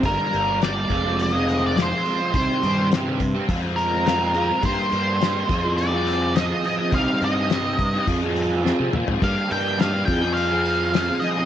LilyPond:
<<
  \new Staff \with { instrumentName = "Lead electric guitar" } { \time 4/4 \key f \dorian \tempo 4 = 104 bes'4 d''4 ees''8. d''16 c''4 | c''4 r4. bes'4. | c''2 d''4 ees''8 ees''8 | f''8 ees''4. r2 |
f''8 g''8 f''8 g''8 f''4. ees''8 | }
  \new Staff \with { instrumentName = "Overdriven electric guitar" } { \time 4/4 \key f \dorian <g, d g bes d'>8 <d g bes d'>8 <g, d g bes d'>16 <g bes d'>16 <f aes c' f'>16 <aes c' f'>8 <aes c' f'>8. <f aes c' f'>16 <aes c' f'>16 <f aes c' f'>16 <aes c' f'>16 | <c ees g c' g'>8 <ees g c' g'>8 <c ees g c' g'>16 <g c' g'>8 <g c' g'>16 <f aes c' f'>16 <aes c' f'>8. <f aes c' f'>16 <aes c' f'>16 <f aes c' f'>16 <aes c' f'>16 | <g bes d' g'>8 <g bes d' g'>8 <g bes d' g'>16 <bes d' g'>16 <f c' f' aes'>16 <c' f' aes'>8 <c' f' aes'>8. <f c' f' aes'>16 <c' f' aes'>16 <f c' f' aes'>16 <c' f' aes'>16 | <c g c' ees' g'>8 <g c' ees' g'>8 <c g c' ees' g'>16 <c' ees' g'>8 <c' ees' g'>16 <f c' f' aes'>16 <c' f' aes'>8. <f c' f' aes'>16 <c' f' aes'>16 <f c' f' aes'>16 <c' f' aes'>16 |
<g bes d' g'>8 <g bes d' g'>8 <g bes d' g'>16 <bes d' g'>16 <f c' f' aes'>16 <c' f' aes'>8 <c' f' aes'>8. <f c' f' aes'>16 <c' f' aes'>16 <f c' f' aes'>16 <c' f' aes'>16 | }
  \new Staff \with { instrumentName = "Fingered electric bass" } { \clef bass \time 4/4 \key f \dorian g,,16 r16 g,,4 f,,2 r8 | c,16 r16 g,4. f,2 | g,16 r16 g,4 f,2 r8 | c,16 r16 g,4. f,4~ f,16 c16 bes,16 aes,16 |
g,16 r16 g,4 f,2 r8 | }
  \new DrumStaff \with { instrumentName = "Drums" } \drummode { \time 4/4 <hho bd>8 hho8 <hho sn>8 <hho bd>8 hho8 hho8 <hho sn>8 hho8 | <hho bd>8 hho8 <hho sn>8 <hho bd>8 <hho bd>8 hho8 <hho sn>8 hho8 | <hho bd>8 hho8 <hho sn>8 <hho bd>8 hho8 hho8 <hho sn>8 hho8 | <hho bd>8 hho8 <hho sn>8 <hho bd>8 <hho bd>8 hho8 sn8 toml16 tomfh16 |
<hho bd>8 hho8 <hho sn>8 <hho bd>8 hho8 hho8 <hho sn>8 hho8 | }
>>